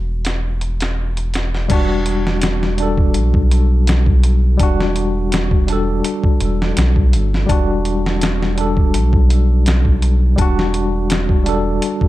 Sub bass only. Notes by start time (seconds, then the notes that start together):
Already playing: E1
1.70 E1
3.16 B1
4.60 E1
6.41 E1
6.77 B1
7.14 G1
7.49 E1
8.95 B1
10.38 E1